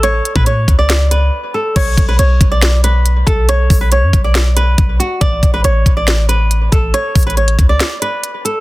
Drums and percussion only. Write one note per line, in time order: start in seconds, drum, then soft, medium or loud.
0.03 closed hi-hat medium
0.25 closed hi-hat medium
0.36 kick medium
0.46 closed hi-hat medium
0.68 kick medium
0.68 closed hi-hat medium
0.90 snare loud
0.90 closed hi-hat medium
1.11 closed hi-hat medium
1.76 kick loud
1.76 closed hi-hat medium
1.76 crash loud
1.98 kick loud
1.98 closed hi-hat medium
2.19 closed hi-hat medium
2.41 kick medium
2.41 closed hi-hat medium
2.62 snare loud
2.62 closed hi-hat medium
2.84 closed hi-hat medium
3.06 closed hi-hat medium
3.27 kick medium
3.27 closed hi-hat medium
3.49 closed hi-hat medium
3.70 kick loud
3.70 open hi-hat medium
3.92 closed hi-hat medium
4.13 kick medium
4.13 closed hi-hat medium
4.35 snare loud
4.35 closed hi-hat medium
4.57 closed hi-hat medium
4.78 kick medium
4.78 closed hi-hat medium
5.00 closed hi-hat medium
5.21 kick loud
5.21 closed hi-hat medium
5.43 kick loud
5.43 closed hi-hat medium
5.64 closed hi-hat medium
5.86 kick medium
5.86 closed hi-hat medium
6.08 snare loud
6.08 closed hi-hat medium
6.29 closed hi-hat medium
6.51 closed hi-hat medium
6.72 kick medium
6.72 closed hi-hat medium
6.94 closed hi-hat medium
7.15 kick loud
7.15 closed hi-hat medium
7.15 open hi-hat medium
7.23 closed hi-hat medium
7.30 closed hi-hat medium
7.37 closed hi-hat medium
7.48 closed hi-hat medium
7.59 kick medium
7.59 closed hi-hat medium
7.80 snare loud
7.80 closed hi-hat medium
8.02 closed hi-hat medium
8.24 closed hi-hat medium
8.46 closed hi-hat medium